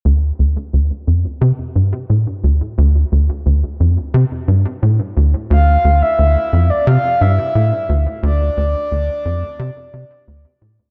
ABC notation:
X:1
M:4/4
L:1/16
Q:1/4=88
K:Dm
V:1 name="Soft synth lead"
z16 | z16 | f3 e4 d f2 e4 z2 | d12 z4 |]
V:2 name="Analog synth bass" clef=bass
D,,2 D,, z D,, z F,, z C,2 G,, z A,, z D,, z | D,,2 D,, z D,, z F,, z C,2 G,, z A,, z D,, z | D,,2 D,, z D,, z F,, z C,2 G,, z A,, z D,, z | D,,2 D,, z D,, z F,, z C,2 C,2 D,, z A,, z |]